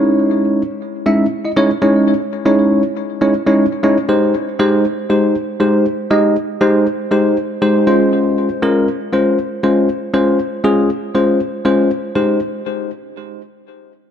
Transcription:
\new Staff \with { instrumentName = "Tine electric piano" } { \time 4/4 \key aes \major \tempo 4 = 119 <aes des' ees' fes' des''>4 r4 <aes des' ees' fes' fes''>16 r8 <fes' ees''>16 <aes des' ees' fes' des''>16 r16 <aes des' ees' fes' des''>8 | r8. <aes des' ees' fes' des''>8. r8. <aes des' ees' fes' des''>16 r16 <aes des' ees' fes' des''>16 r8 <aes des' ees' fes' des''>16 r16 | <aes ees' g' c''>8 r8 <aes ees' g' c''>8 r8 <aes ees' g' c''>8 r8 <aes ees' g' c''>8 r8 | <aes ees' g' ees''>8 r8 <aes ees' g' c''>8 r8 <aes ees' g' c''>8 r8 <aes ees' g' c''>8 <aes des' f' c''>8~ |
<aes des' f' c''>8. r16 <aes des' f' bes'>8 r8 <aes des' f' c''>8 r8 <aes des' f' c''>8 r8 | <aes des' f' c''>8 r8 <aes des' f' aes'>8 r8 <aes des' f' c''>8 r8 <aes des' f' c''>8 r8 | <aes ees' g' c''>8 r2. r8 | }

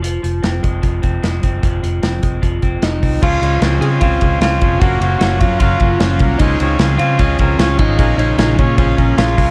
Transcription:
<<
  \new Staff \with { instrumentName = "Transistor combo organ" } { \time 4/4 \key des \major \tempo 4 = 151 r1 | r1 | <des' f' aes' c''>8 <des' f' aes' c''>8 <des' f' aes' c''>8 <des' f' aes' c''>8 <des' f' aes' c''>8 <des' f' aes' c''>8 <des' f' aes' c''>8 <des' f' aes' c''>8 | <des' f' ges' bes'>8 <des' f' ges' c''>8 <des' f' ges' des''>8 <des' f' ges' bes'>8 <des' f' ges' bes'>8 <des' f' ges' bes'>8 <des' f' ges' c''>8 <des' f' ges' bes'>8 |
<des' f' aes' c''>8 <des' f' aes' des''>8 <des' f' aes' c''>8 <des' f' aes' c''>8 <des' f' aes' ees''>8 <des' f' aes' bes'>8 <des' f' aes' des''>8 <des' f' aes' ees''>8 | <des' f' aes' bes'>8 <des' f' aes' c''>8 <des' f' aes' bes'>8 <des' f' aes' des''>8 <des' f' aes' c''>8 <des' f' aes' bes'>8 <des' f' aes' bes'>8 <des' f' aes' bes'>8 | }
  \new Staff \with { instrumentName = "Clean electric guitar" } { \time 4/4 \key des \major r1 | r2. ees'4 | f'4 r8 aes'8 f'4 f'4 | ges'8 ges'8 ges'8 f'8 f'4 des'4 |
ees'4 r8 f'8 des'4 des'8 ees'8~ | ees'8 ees'8 ees'8 des'8 des'4 f'4 | }
  \new Staff \with { instrumentName = "Clean electric guitar" } { \time 4/4 \key des \major f8 f8 c'8 aes8 f8 c'8 aes8 c'8 | f8 f8 c'8 aes8 f8 c'8 aes8 c'8 | f8 aes8 c'8 aes8 c'8 aes8 c'8 f8 | bes8 des'8 f'8 des'8 f'8 des'8 f'8 bes8 |
aes8 c'8 f'8 c'8 f'8 c'8 f'8 aes8 | aes8 des'8 f'8 des'8 f'8 des'8 f'8 aes8 | }
  \new Staff \with { instrumentName = "String machine" } { \time 4/4 \key des \major << { r1 | r1 | <c' f'>1 | <ges bes>1 |
<f' c''>1 | <bes aes'>1 | } \\ { r1 | r1 | des1 | f'1 |
des1~ | des1 | } >> }
  \new Staff \with { instrumentName = "Fingered electric bass" } { \clef bass \time 4/4 \key des \major f,,8 f,,8 f,,8 f,,8 f,,8 f,,8 f,,8 ges,,8 | f,,8 f,,8 f,,8 f,,8 f,,8 f,,8 f,,8 c,8 | des,8 des,8 des,8 des8 des,8 des,8 des,8 f,,8 | ges,,8 ges,,8 ges,,8 ges,8 ges,,8 ges,,8 ges,,8 c,8 |
des,8 des,8 des,8 des8 des,8 des,8 des,8 aes,,8 | bes,,8 bes,,8 bes,,8 bes,8 bes,,8 bes,,8 bes,,8 c,8 | }
  \new DrumStaff \with { instrumentName = "Drums" } \drummode { \time 4/4 hh8 hh8 <hh sn>8 <hh bd>8 <hh bd>8 <hh bd>8 <hh sn>8 <hh bd>8 | <hh bd>8 hh8 <hh sn>8 <hh bd>8 <hh bd>8 <hh bd>8 <hh sn>8 <hho bd>8 | <cymc bd>8 cymr8 <cymr sn>8 cymr8 <bd cymr>8 <bd cymr>8 <cymr sn>8 <bd cymr>8 | <bd cymr>8 cymr8 <cymr sn>8 <bd cymr>8 <bd cymr>8 <bd cymr>8 <cymr sn>8 <bd cymr>8 |
<bd cymr>8 cymr8 <cymr sn>8 cymr8 <bd cymr>8 <bd cymr>8 <cymr sn>8 <bd cymr>8 | <bd cymr>8 cymr8 <cymr sn>8 <bd cymr>8 <bd cymr>8 <bd cymr>8 <cymr sn>8 <hho bd cymr>8 | }
>>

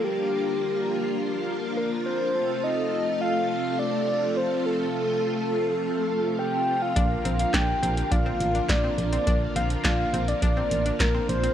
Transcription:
<<
  \new Staff \with { instrumentName = "Soft synth lead" } { \time 4/4 \key bes \major \tempo 4 = 104 g'2. bes'8 c''8~ | c''8 ees''4 f''8 f''8 d''8 d''8 c''8 | a'2. g''8. f''16~ | f''8. f''16 g''4 f''4 d''8. d''16~ |
d''8 f''8 f''8. d''16 d''4 bes'8 c''8 | }
  \new Staff \with { instrumentName = "Analog polysynth" } { \time 4/4 \key bes \major <bes d' f' bes'>1 | <a c' f' a'>1~ | <a c' f' a'>1 | <bes d' f' bes'>1~ |
<bes d' f' bes'>1 | }
  \new Staff \with { instrumentName = "Synth pluck" } { \time 4/4 \key bes \major r1 | r1 | r1 | d'8 c'8 d'8 c'8 d'16 c'8 d'8 c'8 c'16 |
d'8 c'8 d'8 c'8 d'16 c'8 d'8 c'8 c'16 | }
  \new Staff \with { instrumentName = "String machine" } { \clef bass \time 4/4 \key bes \major << { <f f'>1~ | <f f'>1~ | <f f'>1~ | <f f'>1~ |
<f f'>1 | } \\ { <d bes>1 | <c a>1~ | <c a>1 | <d bes>1~ |
<d bes>1 | } >> }
  \new Staff \with { instrumentName = "FM bass" } { \clef bass \time 4/4 \key bes \major r1 | r1 | r1 | bes,,8 bes,,8 bes,,8 bes,,8 bes,,8 a,,8 bes,,8 bes,,8 |
bes,,8 bes,,8 bes,,8 bes,,8 bes,,8 a,,8 bes,,8 bes,,8 | }
  \new DrumStaff \with { instrumentName = "Drums" } \drummode { \time 4/4 r4 r4 r4 r4 | r4 r4 r4 r4 | r4 r4 r4 r4 | <hh bd>8 hh16 hh16 <hc hh bd sn>8 hh16 hh16 <hh bd>8 hh16 hh16 <hc hh bd sn>8 hh16 hh16 |
<hh bd>8 hh16 hh16 <hc hh bd sn>8 hh16 hh16 <hh bd>8 hh16 hh16 <hc hh bd sn>8 hh16 hh16 | }
>>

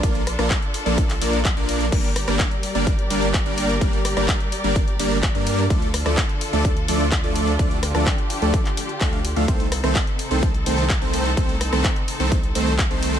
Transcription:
<<
  \new Staff \with { instrumentName = "String section" } { \time 4/4 \key g \minor \tempo 4 = 127 << { a'1 | d''1~ | d''1 | a'1 |
g'1 | a'1~ | a'1 | } \\ { <d' f'>1 | <g g' bes'>1~ | <g g' bes'>1 | <d d' f'>1~ |
<d d' f'>1 | <c c' ees'>1~ | <c c' ees'>1 | } >> }
  \new Staff \with { instrumentName = "Supersaw synth" } { \time 4/4 \key g \minor <f bes d' bes' d''>8 r16 <f bes d' bes' d''>8 r8 <f bes d' bes' d''>8 r16 <f bes d' bes' d''>8 r16 <f bes d' bes' d''>8 r16 | <g bes d' bes' d''>8 r16 <g bes d' bes' d''>8 r8 <g bes d' bes' d''>8 r16 <g bes d' bes' d''>8 r16 <g bes d' bes' d''>8 r16 | <g bes d' bes' d''>8 r16 <g bes d' bes' d''>8 r8 <g bes d' bes' d''>8 r16 <g bes d' bes' d''>8 r16 <g bes d' bes' d''>8 r16 | <f a d' a' d''>8 r16 <f a d' a' d''>8 r8 <f a d' a' d''>8 r16 <f a d' a' d''>8 r16 <f a d' a' d''>8 r16 |
<f a d' d''>8 r16 <f a d' a' d''>8 r8 <f a d' a' d''>8 r8. <f a d' a' f''>8 r16 <f a d' a' f''>16 | <ees a c' a' c''>8 r16 <ees a c' a' c''>8 r8 <ees a c' a' c''>8 r16 <ees a c' a' c''>8 r16 <ees a c' a' c''>8 r16 | <ees a c' a' c''>8 r16 <ees a c' a' c''>8 r8 <ees a c' a' c''>8 r16 <ees a c' a' c''>8 r16 <ees a c' a' c''>8 r16 | }
  \new Staff \with { instrumentName = "Sub bass" } { \clef bass \time 4/4 \key g \minor bes,,8. bes,,16 r8. bes,,8. bes,,8. bes,,8. | g,,8. g,,16 r8. g,,8. g,,8. g,,8. | g,,8. g,,16 r8. g,,8. g,,8. g,8. | d,8. d,16 r8. d,8. d,8. d,8. |
d,8. d,16 r8. d,16 r4 d,8. d,16 | c,8. c,16 r8. c,8. c,8. c,8. | c,8. c,16 r8. c,8. c,8. c,8. | }
  \new DrumStaff \with { instrumentName = "Drums" } \drummode { \time 4/4 <hh bd>16 hh16 <hho ss>16 <hh ss>16 <hc hh bd>16 hh16 hho16 hh16 <hh bd>16 <hc hho>16 hho16 hh16 <hc hh bd>16 hh16 hho16 hh16 | <cymc hh bd>16 hh16 <hho ss>16 <hh ss>16 <hc hh bd>16 hh16 hho16 hh16 <hh bd>16 hh16 hho16 hh16 <hc hh bd>16 hh16 hho16 hh16 | <hh bd>16 hh16 <hho ss>16 <hh ss>16 <hc hh bd>16 hh16 hho16 hh16 <hh bd>16 hh16 hho16 hh16 <hc hh bd>16 hh16 hho16 hh16 | <hh bd>16 hh16 <hho ss>16 <hh ss>16 <hc hh bd>16 hh16 hho16 hh16 <hh bd>16 hh16 hho16 hh16 <hc hh bd>16 hh16 hho16 hh16 |
<hh bd>16 hh16 <hho ss>16 <hh ss>16 <hc hh bd>16 hh16 hho16 hh16 <hh bd>16 <hc hh>16 hho16 hh16 <hc hh bd>16 hh16 hho16 hh16 | <hh bd>16 hh16 <hho ss>16 <hh ss>16 <hc hh bd>16 hh16 hho16 hh16 <hh bd>16 hh16 hho16 hh16 <hc hh bd>16 hh16 hho16 hh16 | <hh bd>16 hh16 <hho ss>16 <hh ss>16 <hc hh bd>16 hh16 hho16 hh16 <hh bd>16 hh16 hho16 hh16 <hc hh bd>16 hh16 hho16 hh16 | }
>>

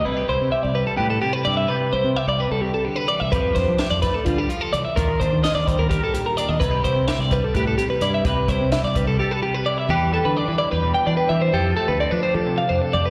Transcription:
<<
  \new Staff \with { instrumentName = "Clean electric guitar" } { \time 7/8 \key c \major \tempo 4 = 128 b'8 c''8 e''16 d''16 b'16 a'16 g'16 a'16 g'16 b'16 d''16 e''16 | b'8 c''8 e''16 d''16 b'16 a'16 g'16 a'16 g'16 b'16 d''16 e''16 | b'8 c''8 e''16 d''16 b'16 a'16 f'16 g'16 f'16 a'16 d''16 e''16 | bes'8 c''8 ees''16 d''16 c''16 bes'16 g'16 a'16 g'16 bes'16 d''16 ees''16 |
b'8 c''8 e''16 d''16 b'16 a'16 g'16 a'16 g'16 b'16 d''16 e''16 | b'8 c''8 e''16 d''16 b'16 a'16 g'16 a'16 g'16 b'16 d''16 e''16 | g'8 a'16 b'16 d''16 b'16 d''16 b'8 g''16 d''16 b'16 e''16 c''16 | g'8 a'16 b'16 d''16 b'16 c''16 a'8 f''16 c''16 a'16 d''16 b'16 | }
  \new Staff \with { instrumentName = "Clean electric guitar" } { \time 7/8 \key c \major << { e'16 g'16 e'8 g'4 b'4 e'8 | g'8 e'8 g'2~ g'8 | g'8 d'8 g'2~ g'8 | f'8 d'8 f'4 bes'4 d'8 |
e'16 g'16 e'8 g'4 b'4 e'8 | g'8 e'8 g'4 a'16 b'8. e'8 | b'4 d'8 e'16 g'8. d'8 g'8 | a'4 c'16 d'16 g'4 d'8 g'8 | } \\ { <c g>4. g4 c4 | c4. g8 c8 d8 e8 | f4. a8 g8 f8 e8 | ees4. g4 bes,4 |
c4. g4 c4 | c4. g4 c4 | e8 g4. b,4. | f8 a4. c4. | } >> }
  \new Staff \with { instrumentName = "Fingered electric bass" } { \clef bass \time 7/8 \key c \major c,8 c,16 c16 r16 c,8 r16 a,8 r8 g,8 | r8 c,16 c16 r16 c,8 c,8 r4 c,16 | f,8 f,16 f16 r16 f,8 r16 d8 r8 c,16 r16 | ees,8 ees,16 ees16 r16 ees,8 ees,8 r4 ees,16 |
c,8 c,16 c16 r16 c,8 r16 a,8 r8 g,8 | r8 c,16 c16 r16 c,8 c,16 r4. | e,8. d8 e16 r16 e,8 r16 e16 r16 e8 | f,8 r16 d,8 f16 r16 f8. f,16 r16 f,8 | }
  \new DrumStaff \with { instrumentName = "Drums" } \drummode { \time 7/8 r4 r4 r4. | r4 r4 r4. | <hh bd>8 <hh bd sn>8 <hh sn>8 <hh bd sn>8 <hh bd>8 hh8 hh8 | <hh bd>8 <hh bd>8 <hh sn>8 <hh bd>8 <hh bd>8 hh8 hh8 |
<hh bd>8 <hh bd>8 <hh sn>8 <hh bd>8 <hh bd>8 hh8 hh8 | <hh bd>8 <hh bd>8 <hh sn>8 <hh bd>8 r4. | r4 r4 r4. | r4 r4 r4. | }
>>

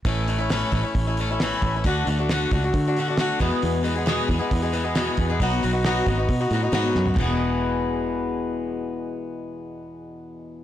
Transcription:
<<
  \new Staff \with { instrumentName = "Steel-string acoustic guitar" } { \time 4/4 \key e \major \tempo 4 = 136 <a, e a cis' e'>8 <e a cis' e'>16 <a cis' e'>16 <a, e a cis' e'>8 <e a cis' e'>16 <a cis' e'>8 <a cis' e'>16 <e a cis' e'>16 <a cis' e'>16 <a, e a cis' e'>8. <a cis' e'>16 | <d a d' fis'>8 <d a d' fis'>16 <a d' fis'>16 <d a d' fis'>8 <d a d' fis'>16 <a d' fis'>8 <a d' fis'>16 <d a d' fis'>16 <a d' fis'>16 <d a d' fis'>8 <e, b, e gis b gis'>8~ | <e, b, e gis b gis'>8 <e gis b gis'>16 <e gis b gis'>16 <e, b, e gis b gis'>8 <e gis b gis'>16 <e gis b gis'>8 <e gis b gis'>16 <e gis b gis'>16 <e gis b gis'>16 <e, b, e gis b gis'>8. <e gis b gis'>16 | <b, fis b dis' fis'>8 <fis b dis' fis'>16 <b dis' fis'>16 <b, fis b dis' fis'>8 <fis b dis' fis'>16 <b dis' fis'>8 <b dis' fis'>16 <fis b dis' fis'>16 <b dis' fis'>16 <b, fis b dis' fis'>8. <b dis' fis'>16 |
<e, b, e gis b gis'>1~ | <e, b, e gis b gis'>1 | }
  \new Staff \with { instrumentName = "Fingered electric bass" } { \clef bass \time 4/4 \key e \major a,,4. a,,16 r16 a,,4. a,,8 | d,8 d,4 cis,8 d4. e,16 r16 | e,4. e,16 r16 e,4. e,8 | b,,8 b,,4 gis,,8 b,8 a,8 gis,8 fis,8 |
e,,1~ | e,,1 | }
  \new DrumStaff \with { instrumentName = "Drums" } \drummode { \time 4/4 <hho bd>8 hho8 <hho sn>8 <hho bd>8 <hho bd>8 hho8 <hho sn>8 <hho bd>8 | <hho bd>8 hho8 <hho sn>8 <hho bd>8 <hho bd>8 hho8 <hho sn>8 <hho bd>8 | hho8 hho8 <hho sn>8 <hho bd>8 <hho bd>8 hho8 <hho sn>8 <hho bd>8 | <hho bd>8 hho8 <hho sn>8 <hho bd>8 <hho bd>8 hho8 <hho sn>8 sn16 tomfh16 |
<cymc bd tomfh>4 r4 r4 r4 | r4 r4 r4 r4 | }
>>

